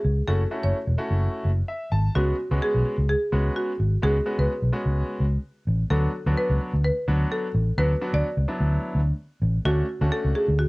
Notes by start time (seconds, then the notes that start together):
Already playing: G#4
0.04 C#2
0.27 F#1 A3 C#4 E4 F#4 A4
0.51 A3 C#4 E4 F#4
0.63 F#1 C#5
0.87 E1
0.98 A3 C#4 E4 F#4
1.11 F#1
1.45 F#1
1.68 E5
1.92 G#1 A5
2.15 C#2 G#3 B3 C#4 F#4
2.51 C#2 G#3 B3 C#4 F#4
2.62 G#4
2.75 B1
2.98 C#2
3.10 G#4
3.32 C#2 G#3 B3 C#4 F#4
3.56 F#4
3.80 G#1
4.02 C#2 G#3 B3 C#4 F#4 G#4
4.26 G#3 B3 C#4 F#4
4.39 C#2 B4
4.62 B1
4.73 G#3 B3 C#4 F#4
4.86 C#2
5.20 C#2
5.67 A1
5.90 D2 F#3 B3 D4 F#4 A4
6.26 D2 F#3 B3 D4 F#4
6.37 B4
6.50 C#2
6.73 D2
6.84 B4
7.07 D2 F#3 B3 D4 F#4
7.32 A4
7.54 A1
7.78 D2 F#3 B3 D4 F#4 B4
8.01 F#3 B3 D4 F#4
8.14 D2 D5
8.37 C#2
8.48 F#3 B3 D4 E4
8.60 D2
8.95 D2
9.42 A1
9.65 D2 A3 C#4 D4 F#4
10.01 D2 A3 C#4 D4 F#4
10.12 A4
10.24 C#2
10.35 G#4
10.48 D2
10.59 F#4